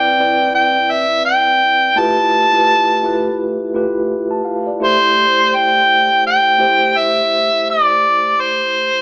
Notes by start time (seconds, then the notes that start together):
Already playing: A2 C4 E4 B4 D5 G5
0.19 A2 C4 E4 B4 D5
0.55 G5
0.92 E5
1.25 G5
1.96 A3 E4 F4 G4 B4 A5
2.52 A3 E4 F4 G4 B4
3.03 A3 E4 F4 G4 B4
3.74 A3 E4 F4 G4 B4
4.31 A5
4.45 F5
4.67 D5
4.80 A3 E4 G4 C5
4.84 C5
5.55 G5
6.27 G5
6.58 A3 E4 G4 C5
6.98 E5
7.70 D5
8.40 C5